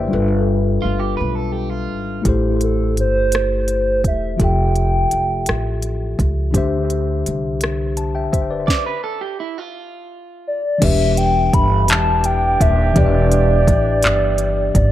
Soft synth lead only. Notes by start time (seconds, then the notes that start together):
2.64 A4
3.00 C5
4.07 E5
4.44 G5
10.48 D5
10.84 E5
11.18 G5
11.54 B5
11.89 A5
12.25 G5
12.61 E5
12.98 D5
14.76 D5